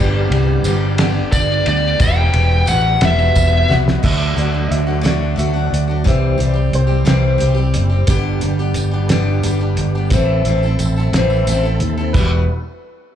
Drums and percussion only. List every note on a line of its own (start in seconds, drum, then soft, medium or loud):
0.32 ride medium
0.64 ride medium
0.64 tambourine loud
0.98 snare loud
0.98 ride loud
0.98 tambourine soft
1.32 kick medium
1.32 ride medium
1.32 tambourine loud
1.66 ride medium
1.66 tambourine soft
2.00 kick loud
2.00 ride loud
2.00 tambourine loud
2.34 ride medium
2.67 ride medium
2.67 tambourine loud
3.01 snare loud
3.01 ride loud
3.19 tambourine soft
3.35 kick medium
3.35 ride medium
3.35 tambourine loud
3.70 snare medium
3.70 tambourine soft
3.88 snare medium
4.04 kick loud
4.04 crash loud
4.38 closed hi-hat medium
4.72 closed hi-hat medium
5.05 snare loud
5.05 closed hi-hat medium
5.39 closed hi-hat medium
5.74 closed hi-hat medium
6.06 kick loud
6.06 closed hi-hat medium
6.40 closed hi-hat medium
6.73 closed hi-hat medium
7.07 snare loud
7.07 closed hi-hat medium
7.40 closed hi-hat medium
7.74 closed hi-hat medium
8.07 kick loud
8.07 closed hi-hat loud
8.07 tambourine medium
8.41 closed hi-hat medium
8.74 closed hi-hat medium
8.74 tambourine medium
9.09 snare loud
9.09 closed hi-hat medium
9.43 closed hi-hat medium
9.43 tambourine medium
9.77 closed hi-hat medium
10.10 kick loud
10.10 closed hi-hat medium
10.10 tambourine medium
10.45 closed hi-hat medium
10.63 tambourine soft
10.79 closed hi-hat medium
10.79 tambourine medium
10.96 tambourine soft
11.13 snare loud
11.13 closed hi-hat medium
11.30 tambourine soft
11.47 closed hi-hat medium
11.47 tambourine loud
11.65 tambourine soft
11.80 closed hi-hat medium
12.14 kick loud
12.14 crash medium
12.14 tambourine medium